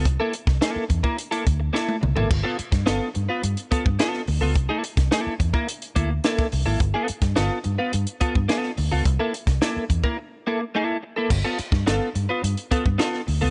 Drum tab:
CC |----------------|x---------------|----------------|----------------|
HH |x-x-x-x-xxx-----|--xxx-x-xxx-x-o-|x-xxx-x-xxx-x-o-|x-xxx-x-xxx-x-o-|
SD |---oo-------o---|---oo-------oo--|---oo-------oo--|---oo-------oo--|
T1 |-------------o--|----------------|----------------|----------------|
T2 |--------------o-|----------------|----------------|----------------|
FT |---------------o|----------------|----------------|----------------|
BD |o--o--oo--o-----|o--o------oo----|o--o--oo--o--o--|o--o------oo----|

CC |----------------|x---------------|
HH |x-xxx-x---------|--x-x-x-xxx-x-o-|
SD |---oo-----------|---oo-------oo--|
T1 |----------------|----------------|
T2 |----------------|----------------|
FT |----------------|----------------|
BD |o--o--oo--------|o--o------oo----|